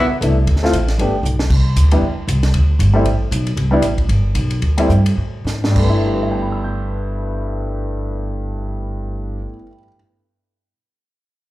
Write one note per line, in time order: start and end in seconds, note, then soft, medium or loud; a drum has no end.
0.00 0.10 B3 medium
0.10 muted upright bass stroke soft
0.21 0.46 C2 medium
0.21 0.35 A3 medium
0.21 0.35 B3 medium
0.21 0.36 D4 soft
0.21 0.36 E4 medium
0.21 kick soft
0.21 hi-hat pedal soft
0.21 ride medium
0.47 0.72 D2 medium
0.47 kick soft
0.47 ride medium
0.56 snare soft
0.63 0.72 A3 medium
0.63 0.73 C4 medium
0.63 0.73 E4 medium
0.63 0.74 F4 medium
0.63 snare soft
0.73 0.98 A1 medium
0.73 kick soft
0.73 hi-hat pedal soft
0.73 ride medium
0.88 snare soft
0.88 ride soft
0.98 1.22 G1 medium
0.98 1.13 A3 medium
0.98 1.13 B3 soft
0.98 1.13 D4 medium
0.98 1.14 G4 medium
0.98 kick soft
0.98 ride medium
1.23 1.49 B1 medium
1.23 hi-hat pedal medium
1.39 snare medium
1.50 1.75 C2 medium
1.50 kick medium
1.50 crash medium
1.76 2.01 D2 medium
1.76 kick soft
1.76 hi-hat pedal medium
1.76 ride medium
1.91 2.02 G3 medium
1.91 2.02 B3 medium
1.91 2.02 D4 medium
1.91 2.02 E4 medium
1.91 ride medium
2.01 2.16 E2 medium
2.01 kick soft
2.17 muted upright bass stroke soft
2.28 2.53 C2 medium
2.28 kick soft
2.28 hi-hat pedal medium
2.28 ride medium
2.43 snare soft
2.43 ride soft
2.54 2.79 D2 medium
2.54 kick soft
2.54 ride medium
2.79 3.04 G1 medium
2.79 kick soft
2.79 hi-hat pedal medium
2.79 ride medium
2.94 3.04 G3 medium
2.94 3.04 A3 medium
2.94 3.05 C4 medium
2.94 3.05 E4 medium
3.05 3.30 A1 medium
3.05 kick soft
3.05 ride medium
3.31 3.56 B1 medium
3.31 kick soft
3.31 hi-hat pedal medium
3.31 ride medium
3.47 ride soft
3.56 3.82 C2 medium
3.56 kick soft
3.56 ride medium
3.71 3.81 G3 medium
3.71 3.81 B3 medium
3.71 3.82 D4 medium
3.71 3.82 E4 medium
3.82 4.08 A1 medium
3.82 kick soft
3.82 hi-hat pedal medium
3.82 ride medium
3.98 kick soft
3.98 ride soft
4.08 4.34 G1 medium
4.08 kick soft
4.08 ride medium
4.35 4.61 B1 medium
4.35 kick soft
4.35 hi-hat pedal soft
4.35 ride medium
4.51 ride soft
4.61 4.88 D2 medium
4.61 kick soft
4.61 ride soft
4.78 4.88 G3 medium
4.78 4.89 A3 medium
4.78 4.89 C4 medium
4.78 4.89 E4 medium
4.78 ride medium
4.89 5.17 G2 medium
4.89 kick soft
4.89 hi-hat pedal medium
5.06 ride medium
5.18 5.44 A2 medium
5.18 kick soft
5.44 5.74 G#2 medium
5.44 snare soft
5.44 hi-hat pedal soft
5.64 9.37 G2 medium
5.64 snare medium
5.71 9.43 G3 medium
5.76 9.44 G1 medium
5.76 9.50 A3 medium
5.76 kick medium
5.76 crash medium
5.83 9.56 B3 medium
5.90 9.62 E4 medium
6.07 9.65 G4 soft
6.14 9.69 B4 soft
6.22 9.73 E5 soft
6.32 9.77 G5 soft
6.42 9.83 B5 soft
6.52 9.88 E6 soft
6.64 9.94 G6 soft